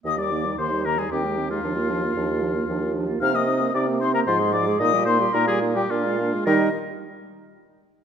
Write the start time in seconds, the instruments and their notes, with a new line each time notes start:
0.04 bassoon D#2, french horn D#3, clarinet A#3, oboe D#5, flute D#6
0.18 french horn G3, clarinet D#4, oboe D5, flute D6
0.31 french horn D#3, clarinet A#3
0.45 french horn G3, clarinet D#4
0.58 bassoon D#2, french horn D#3, clarinet A#3, oboe C5, flute C6
0.72 french horn G3, clarinet D#4
0.85 french horn D#3, clarinet A#3, oboe A#4, flute A#5
0.97 french horn G3, clarinet D#4, oboe G#4, flute G#5
1.11 bassoon D#2, french horn D#3, clarinet C4, oboe G4, flute G5
1.24 french horn G#3, clarinet D#4
1.37 french horn D#3, clarinet C4
1.50 french horn G#3, clarinet D#4, oboe F4, flute F5
1.63 bassoon D#2, french horn F3, clarinet D4
1.75 french horn A#3, clarinet F4
1.89 french horn F3, clarinet D4
2.03 french horn A#3, clarinet F4
2.16 bassoon D#2, french horn F3, clarinet D4
2.29 french horn A#3, clarinet F4
2.42 french horn F3, clarinet D4
2.55 french horn A#3, clarinet F4
2.68 bassoon D#2, french horn F3, clarinet D4
2.81 french horn A#3, clarinet F4
2.94 french horn F3, clarinet D4
3.07 french horn A#3, clarinet F4
3.20 bassoon C3, french horn C4, clarinet D#4, oboe F5, flute F6
3.34 french horn A#3, clarinet C4, oboe D#5, flute D#6
3.48 french horn C4, clarinet D#4
3.61 french horn A#3, clarinet C4
3.74 bassoon C3, french horn C4, clarinet D#4, oboe D5, flute D6
3.88 french horn A#3, clarinet C4
4.00 french horn C4, clarinet D#4, oboe C5, flute C6
4.13 french horn A#3, clarinet C4, oboe A#4, flute A#5
4.27 bassoon G#2, french horn F3, clarinet F4, oboe C5, flute C6
4.40 french horn G#3, clarinet G#4
4.52 french horn F3, clarinet F4, oboe D5, flute D6
4.67 french horn G#3, clarinet G#4
4.80 bassoon A#2, french horn A#3, clarinet D#4, oboe D#5, flute D#6
4.94 french horn G3, clarinet G4
5.06 french horn A#3, clarinet D#4, oboe C5, flute C6
5.20 french horn G3, clarinet G4
5.34 bassoon A#2, french horn A#3, clarinet D#4, oboe A#4, flute A#5
5.47 french horn G3, clarinet G4, oboe G#4, flute G#5
5.61 french horn A#3, clarinet D#4
5.75 french horn G3, oboe G4, clarinet G4, flute G5
5.89 bassoon A#2, french horn A#3, clarinet D4, oboe F4, flute F5
6.04 french horn G#3, clarinet F4
6.19 french horn A#3, clarinet D4
6.33 french horn G#3, clarinet F4
6.46 bassoon D#3, french horn G3, clarinet D#4, oboe A#4, flute D#5